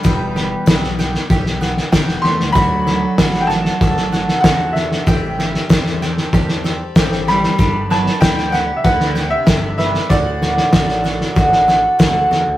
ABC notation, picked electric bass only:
X:1
M:4/4
L:1/16
Q:1/4=95
K:Dmix
V:1 name="Picked electric bass" clef=bass
E,,,4 B,,,4 B,,,4 E,,,2 E,, D,, | D,,4 A,,,4 A,,,4 E,,4 | A,,,4 E,,4 E,,4 A,,,4 | G,,,4 D,,4 D,,4 G,,,4 |
D,,4 A,,,4 A,,,4 D,,2 E,, D,, |]